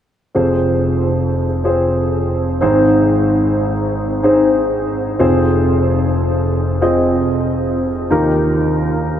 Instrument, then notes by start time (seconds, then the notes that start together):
grand piano
0.35 F1 F2 C4 F4 G#4 C5
1.64 C4 F4 G#4 C5
2.61 G#1 G#2 C4 D#4 G#4 C5
4.23 C4 D#4 G#4 C5
5.19 F1 F2 C4 F4 G#4 C5
6.81 C4 F4 G#4 D#5
8.11 D#2 D#3 D#4 F4 G4 A#4